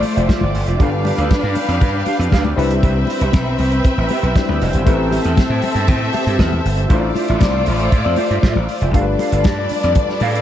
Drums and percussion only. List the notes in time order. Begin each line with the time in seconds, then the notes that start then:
0.03 open hi-hat, muted conga
0.17 closed hi-hat
0.29 kick, snare, closed hi-hat, high conga
0.41 high conga
0.55 open hi-hat
0.67 closed hi-hat
0.80 kick, closed hi-hat
1.05 open hi-hat, muted conga
1.18 closed hi-hat
1.31 kick, snare, closed hi-hat, high conga
1.55 open hi-hat, muted conga
1.69 closed hi-hat
1.81 kick, closed hi-hat, low conga
2.06 open hi-hat, muted conga
2.21 closed hi-hat
2.32 kick, snare, closed hi-hat, high conga
2.45 high conga
2.59 open hi-hat
2.70 closed hi-hat
2.83 kick, closed hi-hat, muted conga
3.07 open hi-hat, muted conga
3.21 closed hi-hat
3.33 kick, snare, closed hi-hat, high conga
3.58 open hi-hat, muted conga
3.72 closed hi-hat
3.84 kick, closed hi-hat
4.08 open hi-hat, muted conga
4.24 closed hi-hat
4.36 kick, snare, closed hi-hat, high conga
4.49 high conga
4.61 open hi-hat
4.73 closed hi-hat
4.87 kick, closed hi-hat, muted conga
5.12 open hi-hat, muted conga
5.24 closed hi-hat
5.37 kick, snare, closed hi-hat, high conga
5.62 open hi-hat, muted conga
5.76 closed hi-hat
5.88 kick, closed hi-hat, low conga
6.13 open hi-hat, muted conga
6.27 closed hi-hat
6.39 kick, snare, closed hi-hat, high conga
6.53 high conga
6.66 open hi-hat
6.77 closed hi-hat
6.90 kick, closed hi-hat, muted conga
7.15 open hi-hat, muted conga
7.28 closed hi-hat
7.41 kick, snare, closed hi-hat, high conga
7.66 open hi-hat, muted conga
7.79 closed hi-hat
7.92 kick, closed hi-hat
8.16 open hi-hat, muted conga
8.31 closed hi-hat
8.43 kick, snare, closed hi-hat, high conga
8.56 high conga
8.69 open hi-hat
8.81 closed hi-hat
8.94 kick, closed hi-hat, muted conga
9.19 open hi-hat, muted conga
9.32 closed hi-hat
9.44 kick, snare, closed hi-hat, high conga
9.69 open hi-hat, muted conga
9.83 closed hi-hat
9.95 kick, closed hi-hat, low conga
10.10 snare
10.20 open hi-hat, muted conga
10.35 closed hi-hat